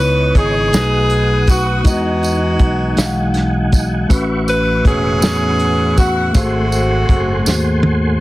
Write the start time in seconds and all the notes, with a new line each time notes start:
Already playing: C#2 C#3 B3 D#4 E4 B4 C#5 D#5 C#6
0.35 G#1 D#4 G#4, kick, closed hi-hat
0.72 B1 B2 A3 D#4 F#4 B4 F#5 D#6, snare, closed hi-hat, tambourine
1.10 closed hi-hat
1.47 F#4, kick, closed hi-hat, tambourine
1.83 E2 E3 G#3 D#4 F#4 D#5 F#5 G#5, kick, closed hi-hat, tambourine
1.88 B3 D#4 F#4
2.23 closed hi-hat, tambourine
2.59 B1, kick, closed hi-hat
2.96 B1 E3 G#3 F#4 F5, snare, closed hi-hat, tambourine
3.06 F#5
3.34 snare, closed hi-hat
3.72 kick, closed hi-hat, tambourine
4.09 A1 A2 A3 C#4 F#4 B4 E5 C#6, kick, closed hi-hat, tambourine
4.48 B4, closed hi-hat, tambourine
4.85 E1 B3 C#4 G#4, kick, closed hi-hat
5.20 E2 A3 C#4 F#4 G#4, snare, closed hi-hat, tambourine
5.59 closed hi-hat
5.97 F#4, kick, closed hi-hat, tambourine
6.32 G#1 G#2 A3 C4 F#4 G#4 C5 G#5 C6, kick, closed hi-hat, tambourine
6.72 closed hi-hat, tambourine
7.08 F#1, kick, closed hi-hat
7.44 D#2 A3 F#4 G#4, snare, tambourine
7.48 C5
7.83 high tom